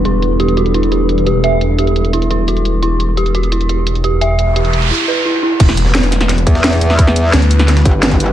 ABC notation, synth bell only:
X:1
M:4/4
L:1/8
Q:1/4=173
K:Em
V:1 name="Synth bell"
E z G F E G z G | e z G z E E F z | E z G F E G z G | e z G z E B E E |
z8 | z8 |]